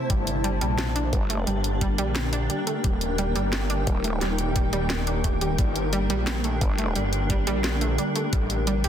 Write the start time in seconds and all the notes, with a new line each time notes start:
Already playing: C5 A5
0.10 G1 D3 G3 A#3 D4 G4, kick, closed hi-hat
0.27 closed hi-hat
0.44 G3, closed hi-hat
0.61 A#1 G3, closed hi-hat
0.66 A#4
0.79 snare, closed hi-hat
0.96 D4 G5, closed hi-hat
1.13 G1 G3, kick, closed hi-hat
1.30 A3, closed hi-hat
1.47 G1 G3, closed hi-hat
1.64 closed hi-hat
1.81 G3, kick, closed hi-hat
1.98 A#1 G3, closed hi-hat
2.16 snare, closed hi-hat
2.33 D4, closed hi-hat
2.50 G3, closed hi-hat
2.67 A3, closed hi-hat
2.84 D#1 D#3 G3 D#4, kick, closed hi-hat
3.01 closed hi-hat
3.18 G3, closed hi-hat
3.36 G1 G3, closed hi-hat
3.53 snare, closed hi-hat
3.70 D4, closed hi-hat
3.87 D#1 G3, kick, closed hi-hat
4.04 A3, closed hi-hat
4.21 D#1 G3, snare, closed hi-hat
4.38 closed hi-hat
4.56 G3, kick, closed hi-hat
4.73 D#1 G3, closed hi-hat
4.90 snare, closed hi-hat
5.07 D4, closed hi-hat
5.24 D#1 A3, kick, closed hi-hat
5.41 G3, closed hi-hat
5.58 G1 D3 G3 D4, kick, closed hi-hat
5.76 closed hi-hat
5.93 G3, closed hi-hat
6.10 A#1 G3, closed hi-hat
6.27 snare, closed hi-hat
6.44 A3, closed hi-hat
6.61 G1 G3, kick, closed hi-hat
6.78 A3, closed hi-hat
6.96 G1 G3, closed hi-hat
7.13 closed hi-hat
7.30 G3, kick, closed hi-hat
7.47 A#1 G3, closed hi-hat
7.64 snare, closed hi-hat
7.81 A3, closed hi-hat
7.98 G3, closed hi-hat
8.16 A3, closed hi-hat
8.33 A1 C3 G3 A3 E4, kick, closed hi-hat
8.47 C5, closed hi-hat
8.67 G3, closed hi-hat
8.77 A5
8.84 C2 G3, closed hi-hat